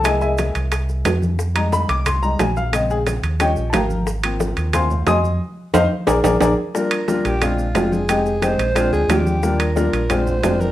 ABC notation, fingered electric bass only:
X:1
M:4/4
L:1/8
Q:1/4=179
K:Bbmix
V:1 name="Fingered electric bass" clef=bass
C,,3 C,,3 F,,2- | F,,3 C,,3 B,,,2- | B,,,3 E,,2 B,,, A,,,2- | A,,,3 E,,3 F,,2 |
z2 F,, z B,,, B,,, B,,, z | z3 B,,,3 F,,,2- | F,,,3 B,,,2 D,, E,,2- | E,,3 B,,,3 F,,,2 |]